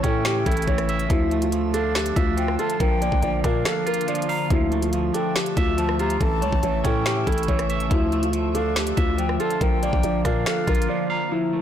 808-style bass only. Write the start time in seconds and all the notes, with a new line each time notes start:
0.04 A2
0.46 A1
0.68 A1
1.10 D2
2.17 D2
2.80 A#1
3.12 A#1
3.23 A#1
3.44 A#2
4.50 D2
5.57 D2
6.21 A1
6.42 C#2
6.53 A1
6.63 A1
6.85 A2
7.27 A1
7.48 A1
7.91 D2
8.97 D2
9.61 A#1
9.93 A#1
10.04 A#1
10.25 A#2
10.68 A#1